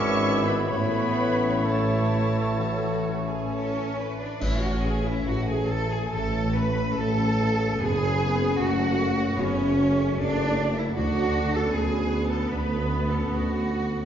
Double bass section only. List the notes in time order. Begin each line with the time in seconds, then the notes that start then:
Already playing: G#1
0.69 A1
4.41 A1
5.26 A1
6.11 A1
6.99 A1
7.80 F#1
8.61 F#1
9.37 F#1
10.17 F#1
10.97 D2
11.74 D2
12.51 D2
13.31 D2